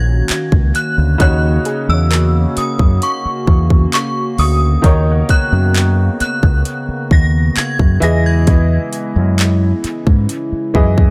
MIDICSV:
0, 0, Header, 1, 8, 480
1, 0, Start_track
1, 0, Tempo, 909091
1, 635, Time_signature, 4, 2, 24, 8
1, 5863, End_track
2, 0, Start_track
2, 0, Title_t, "Synth bell"
2, 0, Program_c, 0, 98
2, 0, Note_on_c, 0, 92, 110
2, 377, Note_off_c, 0, 92, 0
2, 399, Note_on_c, 0, 90, 97
2, 635, Note_off_c, 0, 90, 0
2, 641, Note_on_c, 0, 90, 115
2, 977, Note_off_c, 0, 90, 0
2, 1001, Note_on_c, 0, 88, 95
2, 1362, Note_on_c, 0, 87, 92
2, 1369, Note_off_c, 0, 88, 0
2, 1601, Note_on_c, 0, 85, 99
2, 1606, Note_off_c, 0, 87, 0
2, 2057, Note_off_c, 0, 85, 0
2, 2080, Note_on_c, 0, 85, 91
2, 2320, Note_on_c, 0, 87, 92
2, 2325, Note_off_c, 0, 85, 0
2, 2776, Note_off_c, 0, 87, 0
2, 2800, Note_on_c, 0, 90, 102
2, 3274, Note_off_c, 0, 90, 0
2, 3281, Note_on_c, 0, 90, 105
2, 3737, Note_off_c, 0, 90, 0
2, 3762, Note_on_c, 0, 94, 106
2, 4000, Note_on_c, 0, 92, 101
2, 4006, Note_off_c, 0, 94, 0
2, 4241, Note_on_c, 0, 94, 91
2, 4245, Note_off_c, 0, 92, 0
2, 4350, Note_off_c, 0, 94, 0
2, 4362, Note_on_c, 0, 92, 89
2, 5778, Note_off_c, 0, 92, 0
2, 5863, End_track
3, 0, Start_track
3, 0, Title_t, "Synth pluck"
3, 0, Program_c, 1, 84
3, 0, Note_on_c, 1, 70, 59
3, 854, Note_off_c, 1, 70, 0
3, 876, Note_on_c, 1, 68, 69
3, 1021, Note_on_c, 1, 73, 54
3, 1113, Note_on_c, 1, 70, 72
3, 2134, Note_off_c, 1, 68, 0
3, 2266, Note_off_c, 1, 73, 0
3, 2372, Note_off_c, 1, 70, 0
3, 2554, Note_on_c, 1, 75, 71
3, 2701, Note_on_c, 1, 78, 59
3, 2788, Note_off_c, 1, 78, 0
3, 2795, Note_on_c, 1, 78, 55
3, 3813, Note_off_c, 1, 75, 0
3, 4053, Note_off_c, 1, 78, 0
3, 5863, End_track
4, 0, Start_track
4, 0, Title_t, "Grand piano"
4, 0, Program_c, 2, 0
4, 0, Control_c, 2, 64, 127
4, 0, Note_on_c, 2, 54, 71
4, 0, Note_on_c, 2, 61, 62
4, 0, Note_on_c, 2, 70, 65
4, 0, Note_on_c, 2, 75, 81
4, 608, Note_off_c, 2, 54, 0
4, 612, Note_off_c, 2, 61, 0
4, 615, Note_off_c, 2, 70, 0
4, 619, Note_off_c, 2, 75, 0
4, 624, Note_on_c, 2, 49, 72
4, 631, Note_on_c, 2, 63, 66
4, 638, Note_on_c, 2, 66, 64
4, 643, Control_c, 2, 64, 0
4, 645, Note_on_c, 2, 73, 73
4, 735, Control_c, 2, 64, 127
4, 2528, Note_off_c, 2, 49, 0
4, 2532, Note_off_c, 2, 63, 0
4, 2535, Note_off_c, 2, 66, 0
4, 2539, Note_off_c, 2, 73, 0
4, 2545, Note_on_c, 2, 51, 70
4, 2552, Note_on_c, 2, 63, 69
4, 2559, Note_on_c, 2, 70, 69
4, 2562, Control_c, 2, 64, 0
4, 2565, Note_on_c, 2, 73, 76
4, 2641, Control_c, 2, 64, 127
4, 4209, Note_off_c, 2, 51, 0
4, 4212, Note_off_c, 2, 63, 0
4, 4216, Note_off_c, 2, 70, 0
4, 4219, Note_off_c, 2, 73, 0
4, 4225, Note_on_c, 2, 52, 75
4, 4232, Note_on_c, 2, 64, 68
4, 4239, Note_on_c, 2, 68, 63
4, 4241, Control_c, 2, 64, 0
4, 4246, Note_on_c, 2, 75, 77
4, 4337, Control_c, 2, 64, 127
4, 5649, Note_off_c, 2, 52, 0
4, 5652, Note_off_c, 2, 64, 0
4, 5656, Note_off_c, 2, 68, 0
4, 5659, Note_off_c, 2, 75, 0
4, 5670, Note_on_c, 2, 52, 63
4, 5673, Note_on_c, 2, 64, 59
4, 5677, Note_on_c, 2, 68, 57
4, 5680, Note_on_c, 2, 75, 74
4, 5863, Note_off_c, 2, 52, 0
4, 5863, Note_off_c, 2, 64, 0
4, 5863, Note_off_c, 2, 68, 0
4, 5863, Note_off_c, 2, 75, 0
4, 5863, End_track
5, 0, Start_track
5, 0, Title_t, "Analog synth pad"
5, 0, Program_c, 3, 89
5, 0, Note_on_c, 3, 51, 85
5, 0, Note_on_c, 3, 58, 83
5, 0, Note_on_c, 3, 61, 81
5, 0, Note_on_c, 3, 66, 93
5, 616, Note_off_c, 3, 51, 0
5, 636, Note_on_c, 3, 49, 87
5, 2534, Note_off_c, 3, 61, 0
5, 2555, Note_on_c, 3, 59, 79
5, 4214, Note_off_c, 3, 58, 0
5, 4214, Note_off_c, 3, 66, 0
5, 4235, Note_on_c, 3, 56, 75
5, 4235, Note_on_c, 3, 64, 98
5, 5174, Note_off_c, 3, 59, 0
5, 5196, Note_on_c, 3, 61, 83
5, 5863, Note_off_c, 3, 49, 0
5, 5863, Note_off_c, 3, 56, 0
5, 5863, Note_off_c, 3, 61, 0
5, 5863, Note_off_c, 3, 64, 0
5, 5863, End_track
6, 0, Start_track
6, 0, Title_t, "Fingered electric bass"
6, 0, Program_c, 4, 33
6, 0, Note_on_c, 4, 34, 95
6, 113, Note_off_c, 4, 34, 0
6, 276, Note_on_c, 4, 37, 84
6, 375, Note_off_c, 4, 37, 0
6, 517, Note_on_c, 4, 38, 89
6, 615, Note_off_c, 4, 38, 0
6, 635, Note_on_c, 4, 39, 119
6, 833, Note_off_c, 4, 39, 0
6, 997, Note_on_c, 4, 40, 92
6, 1293, Note_off_c, 4, 40, 0
6, 1476, Note_on_c, 4, 42, 84
6, 1575, Note_off_c, 4, 42, 0
6, 1835, Note_on_c, 4, 40, 102
6, 2033, Note_off_c, 4, 40, 0
6, 2316, Note_on_c, 4, 38, 90
6, 2514, Note_off_c, 4, 38, 0
6, 2556, Note_on_c, 4, 39, 118
6, 2754, Note_off_c, 4, 39, 0
6, 2917, Note_on_c, 4, 42, 90
6, 3213, Note_off_c, 4, 42, 0
6, 3396, Note_on_c, 4, 37, 87
6, 3494, Note_off_c, 4, 37, 0
6, 3755, Note_on_c, 4, 39, 92
6, 3953, Note_off_c, 4, 39, 0
6, 4116, Note_on_c, 4, 42, 87
6, 4215, Note_off_c, 4, 42, 0
6, 4236, Note_on_c, 4, 40, 104
6, 4632, Note_off_c, 4, 40, 0
6, 4836, Note_on_c, 4, 42, 91
6, 5133, Note_off_c, 4, 42, 0
6, 5316, Note_on_c, 4, 44, 94
6, 5415, Note_off_c, 4, 44, 0
6, 5676, Note_on_c, 4, 42, 88
6, 5863, Note_off_c, 4, 42, 0
6, 5863, End_track
7, 0, Start_track
7, 0, Title_t, "Muted fingered electric bass strokes"
7, 158, Note_on_c, 9, 29, 50
7, 211, Note_off_c, 9, 29, 0
7, 1357, Note_on_c, 9, 29, 51
7, 1410, Note_off_c, 9, 29, 0
7, 1718, Note_on_c, 9, 29, 48
7, 1770, Note_off_c, 9, 29, 0
7, 3276, Note_on_c, 9, 29, 50
7, 3329, Note_off_c, 9, 29, 0
7, 3635, Note_on_c, 9, 29, 49
7, 3688, Note_off_c, 9, 29, 0
7, 3996, Note_on_c, 9, 29, 50
7, 4049, Note_off_c, 9, 29, 0
7, 5197, Note_on_c, 9, 29, 51
7, 5250, Note_off_c, 9, 29, 0
7, 5556, Note_on_c, 9, 29, 49
7, 5609, Note_off_c, 9, 29, 0
7, 5863, End_track
8, 0, Start_track
8, 0, Title_t, "Drums"
8, 153, Note_on_c, 9, 42, 71
8, 156, Note_on_c, 9, 39, 110
8, 205, Note_off_c, 9, 42, 0
8, 209, Note_off_c, 9, 39, 0
8, 275, Note_on_c, 9, 36, 98
8, 328, Note_off_c, 9, 36, 0
8, 395, Note_on_c, 9, 42, 69
8, 448, Note_off_c, 9, 42, 0
8, 633, Note_on_c, 9, 42, 85
8, 634, Note_on_c, 9, 36, 121
8, 686, Note_off_c, 9, 42, 0
8, 687, Note_off_c, 9, 36, 0
8, 873, Note_on_c, 9, 42, 69
8, 926, Note_off_c, 9, 42, 0
8, 1115, Note_on_c, 9, 42, 73
8, 1120, Note_on_c, 9, 39, 120
8, 1168, Note_off_c, 9, 42, 0
8, 1172, Note_off_c, 9, 39, 0
8, 1355, Note_on_c, 9, 42, 68
8, 1408, Note_off_c, 9, 42, 0
8, 1475, Note_on_c, 9, 36, 105
8, 1528, Note_off_c, 9, 36, 0
8, 1594, Note_on_c, 9, 42, 69
8, 1647, Note_off_c, 9, 42, 0
8, 1834, Note_on_c, 9, 36, 95
8, 1887, Note_off_c, 9, 36, 0
8, 1956, Note_on_c, 9, 36, 96
8, 2008, Note_off_c, 9, 36, 0
8, 2075, Note_on_c, 9, 42, 75
8, 2079, Note_on_c, 9, 39, 116
8, 2128, Note_off_c, 9, 42, 0
8, 2131, Note_off_c, 9, 39, 0
8, 2315, Note_on_c, 9, 46, 71
8, 2368, Note_off_c, 9, 46, 0
8, 2555, Note_on_c, 9, 36, 127
8, 2555, Note_on_c, 9, 42, 84
8, 2607, Note_off_c, 9, 42, 0
8, 2608, Note_off_c, 9, 36, 0
8, 2793, Note_on_c, 9, 42, 68
8, 2795, Note_on_c, 9, 36, 79
8, 2846, Note_off_c, 9, 42, 0
8, 2847, Note_off_c, 9, 36, 0
8, 3036, Note_on_c, 9, 42, 70
8, 3040, Note_on_c, 9, 39, 120
8, 3089, Note_off_c, 9, 42, 0
8, 3093, Note_off_c, 9, 39, 0
8, 3276, Note_on_c, 9, 42, 69
8, 3328, Note_off_c, 9, 42, 0
8, 3395, Note_on_c, 9, 36, 107
8, 3448, Note_off_c, 9, 36, 0
8, 3513, Note_on_c, 9, 42, 72
8, 3566, Note_off_c, 9, 42, 0
8, 3754, Note_on_c, 9, 36, 93
8, 3807, Note_off_c, 9, 36, 0
8, 3993, Note_on_c, 9, 42, 68
8, 3997, Note_on_c, 9, 39, 112
8, 4046, Note_off_c, 9, 42, 0
8, 4050, Note_off_c, 9, 39, 0
8, 4115, Note_on_c, 9, 36, 97
8, 4168, Note_off_c, 9, 36, 0
8, 4234, Note_on_c, 9, 42, 67
8, 4287, Note_off_c, 9, 42, 0
8, 4473, Note_on_c, 9, 42, 83
8, 4475, Note_on_c, 9, 36, 127
8, 4525, Note_off_c, 9, 42, 0
8, 4527, Note_off_c, 9, 36, 0
8, 4713, Note_on_c, 9, 42, 69
8, 4766, Note_off_c, 9, 42, 0
8, 4956, Note_on_c, 9, 42, 68
8, 4960, Note_on_c, 9, 39, 116
8, 5009, Note_off_c, 9, 42, 0
8, 5013, Note_off_c, 9, 39, 0
8, 5195, Note_on_c, 9, 42, 67
8, 5248, Note_off_c, 9, 42, 0
8, 5315, Note_on_c, 9, 36, 96
8, 5368, Note_off_c, 9, 36, 0
8, 5434, Note_on_c, 9, 42, 71
8, 5486, Note_off_c, 9, 42, 0
8, 5675, Note_on_c, 9, 36, 96
8, 5727, Note_off_c, 9, 36, 0
8, 5796, Note_on_c, 9, 36, 98
8, 5849, Note_off_c, 9, 36, 0
8, 5863, End_track
0, 0, End_of_file